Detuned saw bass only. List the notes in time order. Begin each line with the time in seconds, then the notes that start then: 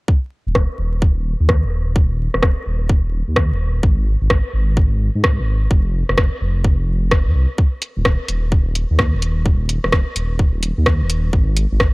0.47 D#1
0.55 D#1
0.78 D#1
1.40 D#2
1.64 D#1
2.34 D#1
2.43 D#1
2.66 D#1
3.28 D#2
3.51 D#1
3.83 G#1
4.22 G#1
4.30 G#1
4.54 G#1
5.15 G#2
5.39 G#1
5.71 F1
6.09 F1
6.18 F1
6.41 F1
6.88 F1
7.26 F2
7.35 C2
7.97 D#1
8.05 D#1
8.28 D#1
8.90 D#2
9.14 D#1
9.84 D#1
9.92 D#1
10.16 D#1
10.78 D#2
11.01 D#1
11.33 G#1
11.72 G#1
11.80 G#1